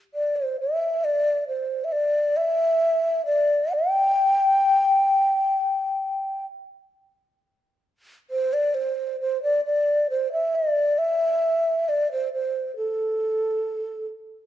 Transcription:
xiao
0.14 D5
0.36 C5
0.60 E5
1.04 D5
1.48 C5
1.84 E5
1.92 D5
2.37 E5
3.26 D5
3.73 G5
8.31 C5
8.53 D5
8.74 C5
9.20 C5
9.43 D5
9.65 D5
10.10 C5
10.32 E5
10.55 D5
10.98 E5
11.89 D5
12.12 C5
12.33 C5
12.77 A4

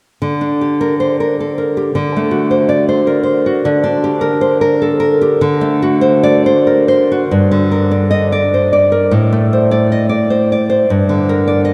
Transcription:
nylon-string guitar
0.22 D3
0.41 D4
0.61 G4
0.81 A#4
1.00 C5
1.20 A#4
1.40 A4
1.58 A#4
1.77 G4
1.95 D3
2.16 A3
2.31 F#4
2.51 C5
2.69 D5
2.89 C5
3.07 A#4
3.23 C5
3.46 F#4
3.65 D3
3.84 D4
4.04 G4
4.21 A#4
4.41 C5
4.61 A#4
4.82 A4
5.00 A#4
5.21 G4
5.41 D3
5.61 A3
5.82 F#4
6.01 C5
6.23 D5
6.46 C5
6.67 A#4
6.88 C5
7.12 F#4
7.31 G2
7.51 D3
7.71 A#4
7.91 D5
8.11 D#5
8.32 D5
8.54 C5
8.73 D5
8.92 A#4
9.11 A2
9.33 A3
9.53 C5
9.71 D5
9.92 D#5
10.09 D5
10.30 C5
10.52 D5
10.70 C5
10.90 G2
11.09 D3
11.29 A#4
11.48 D5
11.65 D#5

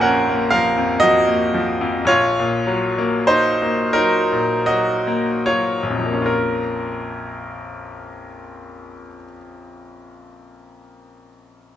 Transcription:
grand piano
Already playing: A#1 F2 F3 A#3 A#4 C5 F5 G#5
0.01 C#4 A#4 F#5
0.29 A#3
0.50 F3 A#4 F5
0.77 F2
1.00 F3 F#4 D#5
1.27 A#3
1.54 F3
1.81 F2
2.05 A#1 F4 C#5
2.39 A#2
2.67 F#3
2.98 A#3
3.27 D#4 C5
3.62 A#3
3.93 F#3 D#4 A#4
4.32 A#2
4.66 F#3 F#4 D#5
5.07 A#3
5.46 F#3 F4 C#5
5.83 A#1
5.90 F2 A#2
5.98 F3
6.06 A#3
6.14 C#4
6.22 F4 A#4

